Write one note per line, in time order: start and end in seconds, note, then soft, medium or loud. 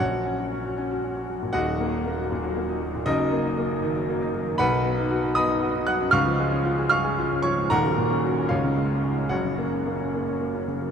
0.00 1.51 A#1 medium
0.00 0.37 F#4 medium
0.00 1.25 C#5 medium
0.00 1.28 F#5 loud
0.12 0.33 F#3 medium
0.25 0.46 C#4 medium
0.39 0.59 F#4 medium
0.52 0.73 C#4 medium
0.64 0.85 F#4 medium
0.78 0.98 C#4 medium
0.91 1.11 F#4 medium
1.04 1.24 C#4 medium
1.17 1.37 F#4 medium
1.30 1.50 F#3 medium
1.43 1.55 A#2 medium
1.53 3.03 D#1 medium
1.53 3.03 D#2 medium
1.53 3.03 F#4 loud
1.53 3.03 D#5 medium
1.53 3.06 F#5 loud
1.68 1.88 F#3 medium
1.80 2.01 A#3 medium
1.92 2.13 D#4 medium
2.06 2.26 A#3 medium
2.19 2.39 F#3 medium
2.32 2.52 A#2 medium
2.43 2.64 F#3 medium
2.57 2.77 A#3 medium
2.69 2.89 D#4 medium
2.82 3.02 F#3 medium
2.95 3.07 A#2 medium
3.06 4.56 F#1 loud
3.06 4.56 F#2 loud
3.06 3.44 D#4 loud
3.06 4.31 A#4 loud
3.06 4.34 D#5 loud
3.20 3.41 F#3 medium
3.33 3.53 A#3 medium
3.46 3.66 D#4 medium
3.58 3.79 A#3 medium
3.71 3.92 F#3 medium
3.83 4.04 D#3 medium
3.96 4.17 F#3 medium
4.09 4.29 A#3 medium
4.22 4.43 D#4 medium
4.34 4.55 F#3 medium
4.47 4.60 D#3 medium
4.58 6.10 B1 loud
4.58 5.32 B4 loud
4.58 5.32 F#5 loud
4.58 5.35 B5 loud
4.72 4.93 F#3 medium
4.85 5.05 B3 medium
4.97 5.18 D#4 medium
5.11 5.32 F#4 medium
5.23 5.44 D#4 medium
5.35 5.57 B3 medium
5.35 5.84 D#5 loud
5.35 5.84 B5 loud
5.35 5.88 D#6 loud
5.49 5.70 D#4 medium
5.63 5.83 F#4 medium
5.76 5.96 D#4 medium
5.87 6.09 F#3 medium
5.87 6.12 F#5 medium
5.87 6.13 F#6 loud
6.00 6.14 F#2 medium
6.11 7.66 C#2 loud
6.11 6.87 F5 loud
6.11 6.87 C#6 loud
6.11 6.88 F6 loud
6.26 6.48 F3 medium
6.40 6.61 G#3 medium
6.52 6.73 C#4 medium
6.66 6.87 F4 medium
6.79 7.00 G#4 medium
6.89 7.12 F4 medium
6.89 7.40 F5 loud
6.89 7.40 C#6 loud
6.89 7.43 F6 loud
7.04 7.26 G#4 medium
7.18 7.39 F4 medium
7.31 7.52 C#4 medium
7.42 7.65 F3 medium
7.42 7.68 C#5 medium
7.42 7.70 C#6 loud
7.58 7.71 G#2 medium
7.70 8.48 D#1 loud
7.70 8.48 D#2 loud
7.70 8.46 A#4 loud
7.70 8.47 F#5 loud
7.70 8.50 A#5 loud
7.84 8.05 F#3 medium
7.98 8.18 A#2 medium
8.10 8.31 C#4 medium
8.25 8.45 F#4 medium
8.38 8.51 C#4 medium
8.49 9.30 C#2 medium
8.49 9.28 F4 medium
8.49 9.28 C#5 medium
8.49 9.31 F5 loud
8.64 8.86 C#3 medium
8.78 8.99 G#3 medium
8.91 9.13 C#4 medium
9.04 9.26 G#3 medium
9.18 9.32 C#4 medium
9.29 10.91 F#1 medium
9.29 10.91 F#2 medium
9.29 10.65 F#4 medium
9.29 10.65 C#5 medium
9.29 10.68 F#5 loud
9.45 9.67 C#3 medium
9.58 9.81 A#3 medium
9.73 9.95 C#4 medium
9.87 10.09 A#3 medium
10.01 10.23 C#4 medium
10.15 10.36 A#3 medium
10.28 10.50 C#4 medium
10.42 10.64 A#3 medium
10.54 10.77 C#4 medium
10.68 10.90 C#3 medium
10.82 10.91 F#3 medium